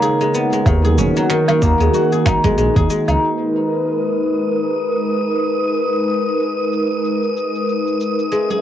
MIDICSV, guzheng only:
0, 0, Header, 1, 2, 480
1, 0, Start_track
1, 0, Key_signature, 5, "minor"
1, 0, Tempo, 638298
1, 497, Time_signature, 4, 2, 24, 8
1, 6478, End_track
2, 0, Start_track
2, 0, Title_t, "Guzheng"
2, 0, Program_c, 0, 107
2, 0, Note_on_c, 0, 51, 82
2, 0, Note_on_c, 0, 58, 82
2, 0, Note_on_c, 0, 61, 80
2, 16, Note_on_c, 0, 68, 108
2, 155, Note_on_c, 0, 56, 78
2, 258, Note_on_c, 0, 59, 77
2, 303, Note_off_c, 0, 58, 0
2, 387, Note_off_c, 0, 56, 0
2, 396, Note_on_c, 0, 56, 72
2, 489, Note_off_c, 0, 51, 0
2, 498, Note_on_c, 0, 51, 75
2, 535, Note_off_c, 0, 56, 0
2, 632, Note_off_c, 0, 68, 0
2, 635, Note_on_c, 0, 68, 83
2, 734, Note_off_c, 0, 61, 0
2, 737, Note_on_c, 0, 61, 73
2, 876, Note_on_c, 0, 54, 72
2, 967, Note_off_c, 0, 51, 0
2, 976, Note_on_c, 0, 51, 105
2, 1015, Note_off_c, 0, 54, 0
2, 1106, Note_off_c, 0, 51, 0
2, 1115, Note_on_c, 0, 51, 106
2, 1217, Note_on_c, 0, 58, 67
2, 1262, Note_off_c, 0, 59, 0
2, 1355, Note_on_c, 0, 56, 72
2, 1458, Note_on_c, 0, 66, 78
2, 1591, Note_off_c, 0, 68, 0
2, 1594, Note_on_c, 0, 68, 75
2, 1697, Note_on_c, 0, 63, 84
2, 1825, Note_off_c, 0, 56, 0
2, 1834, Note_on_c, 0, 56, 104
2, 1927, Note_off_c, 0, 56, 0
2, 1936, Note_on_c, 0, 56, 92
2, 2073, Note_off_c, 0, 68, 0
2, 2076, Note_on_c, 0, 68, 103
2, 2170, Note_off_c, 0, 56, 0
2, 2179, Note_on_c, 0, 56, 76
2, 2312, Note_off_c, 0, 63, 0
2, 2315, Note_on_c, 0, 63, 77
2, 2454, Note_off_c, 0, 51, 0
2, 2455, Note_off_c, 0, 56, 0
2, 2916, Note_off_c, 0, 61, 0
2, 3290, Note_off_c, 0, 66, 0
2, 3635, Note_off_c, 0, 58, 0
2, 3786, Note_off_c, 0, 68, 0
2, 4349, Note_off_c, 0, 63, 0
2, 6254, Note_on_c, 0, 56, 65
2, 6395, Note_on_c, 0, 68, 65
2, 6478, Note_off_c, 0, 56, 0
2, 6478, Note_off_c, 0, 68, 0
2, 6478, End_track
0, 0, End_of_file